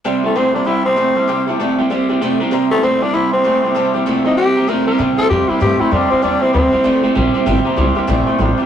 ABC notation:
X:1
M:4/4
L:1/8
Q:"Swing" 1/4=194
K:Cmix
V:1 name="Honky-tonk piano"
[ceg] [ceg] [ceg] [ceb] [ceg] [ceg] [ceg] [ceg] | [ceg] [cea] [cea] [ceg] [ceg] [ceg] [ceg] [ceb] | [ceb] [ce] [ceg] [ceg] [cea] [ceg] [ceg] [ceg] | [cea] [ceg] [ceg] [ceg] [ceg] [ceb] [ceg] [ceb] |
[ceg] [ceg] [eg] [ceg] [ceg] [ceg] [ceg] [ceg] | [ceg] [ceg] [ceg] [ceg] [ceg] [ceg] [ceg] [ceg] | [ceg] [ceb] [ceg] [ceg] [ceg] [ceg] [ceg] [ceg] |]
V:2 name="Steel-string acoustic guitar"
[C,G,B,EG] [B,EG] [C,G,B,EG] [B,EG] [G,B,EG] [B,EG] [C,G,B,EG] [B,EG] | [C,G,B,EG] [B,EG] [C,G,B,EG] [B,EG] [G,B,EG] [B,EG] [C,G,B,EG] [B,EG] | [C,G,B,EG] [B,EG] [C,G,B,EG] [B,EG] [G,B,EG] [B,EG] [C,G,B,EG] [B,EG] | [C,G,B,EG] [B,EG] [C,G,B,EG] [B,EG] [G,B,EG] [B,EG] [C,G,B,EG] [B,EG] |
[C,G,B,EG] [B,EG] [G,B,EG] [B,EG] [C,G,B,EG] [B,EG] [G,B,EG] [B,EG] | [C,G,B,EG] [B,EG] [G,B,EG] [B,EG] [C,G,B,EG] [B,EG] [G,B,EG] [B,EG] | [C,G,B,EG] [B,EG] [G,B,EG] [B,EG] [C,G,B,EG] [B,EG] [G,B,EG] [B,EG] |]
V:3 name="Tenor saxophone"
z A, C D E C3- | C z6 z | z A, C D E C3- | C z2 _E G2 B B |
z A G E G E D C | D C C4 z2 | z8 |]
V:4 name="Clean electric guitar" clef=bass
[C,G,] [C,G,] [C,A,] [C,G,] [C,G,] [C,G,] [C,A,] [C,G,] | [C,G,] [C,G,] [C,A,] [C,G,] [C,G,] [C,G,] [C,A,] [C,G,] | [C,G,] [C,G,] [C,A,] [C,G,] [C,G,] [C,G,] [C,A,] [C,G,] | [C,G,] [C,G,] [C,A,] [C,G,] [C,G,] [C,G,] [C,A,] [C,G,] |
[C,G,] [C,G,] [C,G,] [C,G,] [C,A,] [C,A,] [C,G,] [C,G,] | [C,G,] [C,G,] [C,G,] [C,G,] [C,A,] [C,A,] [C,G,] [C,G,] | [C,G,] [C,G,] [C,G,] [C,G,] [C,A,] [C,A,] [C,G,] [C,G,] |]
V:5 name="Upright bass" clef=bass
z8 | z8 | z8 | z8 |
C, z F,, z G,, z F,, z | E,, z D,, z C,, z B,,, z | G,,, z C,, z B,,, z A,,, z |]